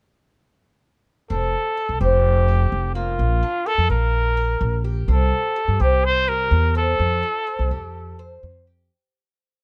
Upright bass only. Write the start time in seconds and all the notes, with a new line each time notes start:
1.30 F1
1.89 C2
2.01 F1
2.72 F1
3.19 A#1
3.78 F2
3.89 A#1
4.61 A#1
5.08 C2
5.68 G2
5.80 C2
6.51 E2
6.99 F2
7.59 C2
7.71 F2
8.43 F2